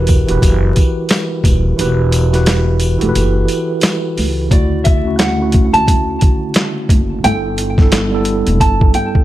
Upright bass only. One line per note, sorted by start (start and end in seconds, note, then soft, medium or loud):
0.00 0.25 E1 loud
0.29 0.40 E1 medium
0.43 0.71 F#1 medium
1.44 1.72 D#1 medium
1.79 2.98 E1 loud
3.02 3.13 E1 medium
3.16 3.43 F#1 loud
4.18 4.46 C#2 medium
4.52 5.70 D2 loud
5.75 5.86 C#2 medium
5.88 6.16 D2 loud
6.90 7.18 F#1 loud
7.25 8.43 G1 loud
8.48 8.61 E1 medium
8.61 8.89 G1 loud